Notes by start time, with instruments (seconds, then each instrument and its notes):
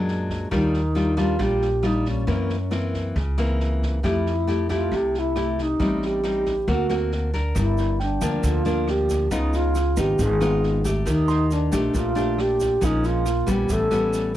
Already playing: upright bass F#2, nylon-string guitar A#2 F#3 G#3 D4
0.08 snare
0.30 kick, snare
0.51 upright bass D#2, nylon-string guitar D#3 G3 D4 F4, alto flute D#4, kick, cross-stick, snare
0.74 snare
0.95 nylon-string guitar G3 D4 F4, snare
1.17 nylon-string guitar G3 D4 F4, alto flute F4, kick, cross-stick, snare
1.39 upright bass A#1, nylon-string guitar A#2 G3 D4 F4, alto flute G4, kick, snare
1.62 snare
1.83 nylon-string guitar G3 D4 F4, alto flute D#4, cross-stick, snare
2.05 alto flute C#4, kick, snare
2.27 nylon-string guitar F#2 E3 A#3 C4, upright bass F#2, kick, snare
2.49 snare
2.71 nylon-string guitar E3 A#3 C4, cross-stick, snare
2.94 kick, snare
3.16 upright bass C#2, nylon-string guitar C#3, kick, snare
3.38 nylon-string guitar E3 A#3 C4, cross-stick, snare
3.60 snare
3.82 kick, snare
4.03 upright bass F2, nylon-string guitar F3 A3 E4 G4, alto flute E4, kick, cross-stick, snare
4.26 snare
4.47 nylon-string guitar A3 E4 G4, snare
4.69 nylon-string guitar A3 E4 G4, alto flute F4, kick, cross-stick, snare
4.91 upright bass C2, nylon-string guitar C3, alto flute G4, kick, snare
5.14 alto flute E4, snare
5.36 nylon-string guitar A3 E4 G4, cross-stick, snare
5.58 alto flute D#4, kick, snare
5.80 upright bass A1, nylon-string guitar A2 G3 C4 D#4, kick, snare
6.02 alto flute G4, snare
6.23 nylon-string guitar G3 C4 D#4, cross-stick, snare
6.46 kick, snare
6.68 upright bass D2, nylon-string guitar D3 A#3 C4 F#4, alto flute F#4, kick, snare
6.89 nylon-string guitar A#3 C4 F#4, cross-stick, snare
7.12 snare
7.33 nylon-string guitar D4 A#4, kick, snare
7.55 upright bass G1, nylon-string guitar G2, kick, cross-stick, snare, shaker
7.59 alto flute E4
7.78 snare, shaker
8.00 alto flute D4, grand piano G5, snare
8.21 upright bass D2, nylon-string guitar F3 A#3 D4, kick, cross-stick, snare, shaker
8.43 upright bass D2, nylon-string guitar D3, alto flute F4, kick, snare, shaker
8.65 nylon-string guitar F3 A#3 D4, snare, shaker
8.88 alto flute G4, cross-stick, snare
9.09 kick, snare, shaker
9.31 upright bass C#2, nylon-string guitar C#3 B3 D#4 F4, alto flute D#4, kick, snare, shaker
9.53 alto flute F4, snare, shaker
9.75 cross-stick, snare, shaker
9.97 upright bass G#1, nylon-string guitar B3 D#4 F4, alto flute G4, kick, snare, shaker
10.19 upright bass G#1, nylon-string guitar G#2, alto flute G#4, kick, snare, shaker
10.40 nylon-string guitar B3 D#4 F4, cross-stick, snare, shaker
10.63 snare
10.84 nylon-string guitar A3 G4, kick, snare, shaker
11.06 upright bass D#2, nylon-string guitar D#3, alto flute D#4, kick, cross-stick, snare, shaker
11.28 grand piano C6, snare, shaker
11.51 alto flute D4, snare, shaker
11.72 upright bass A#1, nylon-string guitar A3 D4 G4, kick, cross-stick, snare, shaker
11.93 upright bass A#1, nylon-string guitar A#2, alto flute F4, kick, snare, shaker
12.15 nylon-string guitar A3 D4 G4, snare, shaker
12.39 alto flute G4, cross-stick, snare
12.60 kick, snare, shaker
12.81 upright bass A#1, nylon-string guitar A#2 F3 G#3 C#4, alto flute D#4, kick, snare, shaker
13.04 alto flute F4, snare, shaker
13.26 cross-stick, snare, shaker
13.46 upright bass A#1, nylon-string guitar G3 B3 C#4, alto flute G4, kick, snare, shaker
13.69 upright bass A1, nylon-string guitar A2, alto flute A4, kick, snare, shaker
13.91 nylon-string guitar G3 B3 C#4, cross-stick, snare, shaker
14.13 snare, shaker